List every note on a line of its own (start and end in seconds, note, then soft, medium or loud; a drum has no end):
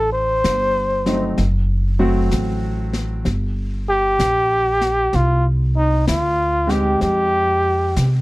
0.00 0.41 A1 medium
0.13 1.35 C5 medium
0.44 1.36 G1 medium
0.44 snare medium
0.44 hi-hat pedal medium
1.06 1.35 F#3 medium
1.06 1.36 A3 medium
1.06 1.36 C4 soft
1.06 1.36 D#4 medium
1.06 snare soft
1.38 2.30 F#1 medium
1.38 brush sweep soft
1.38 snare soft
1.99 3.19 F#3 medium
1.99 3.19 A3 medium
1.99 3.19 C4 medium
1.99 3.19 F#4 medium
2.31 3.24 A1 medium
2.31 snare soft
2.31 hi-hat pedal soft
2.93 snare soft
3.25 4.17 G1 medium
3.25 brush sweep soft
3.25 snare soft
3.89 5.17 G4 loud
4.19 5.11 A#1 medium
4.19 snare medium
4.19 hi-hat pedal medium
4.81 snare soft
5.13 6.05 C2 medium
5.13 5.46 F4 medium
5.13 brush sweep soft
5.13 snare soft
5.77 6.06 D#4 medium
6.07 6.99 D2 medium
6.07 6.72 F4 medium
6.07 snare medium
6.07 hi-hat pedal medium
6.67 7.89 G#3 medium
6.67 7.89 C4 medium
6.67 7.89 D#4 medium
6.67 7.90 G4 medium
6.67 7.02 G4 medium
6.67 snare soft
7.01 7.94 F2 medium
7.01 8.20 G4 medium
7.01 brush sweep soft
7.01 snare soft
7.96 8.21 C3 medium
7.96 snare medium
7.96 hi-hat pedal soft